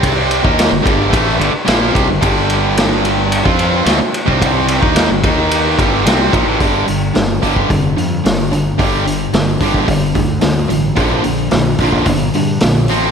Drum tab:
RD |x-x-x-x-x-x-x-x-|x-x-x-x-x-x-x-x-|x-x-x-x-x-x-x-x-|----------------|
HH |----------------|----------------|----------------|o-o-o-o-o-o-o-o-|
SD |----o-------o---|----o-------o---|----o-----o-o---|----o-------o---|
BD |o--o--o-o-----o-|o--------o-----o|o--o--o---o---o-|o-----ooo-------|

RD |----------------|----------------|
HH |o-o-o-o-o-o-o-o-|o-o-o-o-o-o-o-o-|
SD |----o-------o---|----o-------o---|
BD |o-----ooo-o-----|o-----ooo-------|